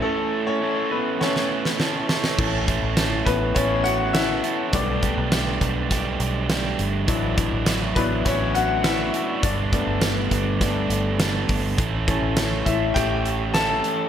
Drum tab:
CC |----------------|x---------------|----------------|----------------|
HH |----------------|--x-x-x-x-x-x-x-|x-x-x-x-x-x-x-x-|x-x-x-x-x-x-x-x-|
SD |--------oo-oo-oo|----o-------o---|----o---o---o---|----o---o---o---|
BD |----------------|o-o---o-o-------|o-o---o-o-------|o-o---o-o-------|

CC |----------------|----------------|
HH |x-x-x-x-x-x-x-o-|x-x-x-x-x-x-x-x-|
SD |----o---o---o---|----o---o---o---|
BD |o-o---o-o-----o-|o-o---o-o-------|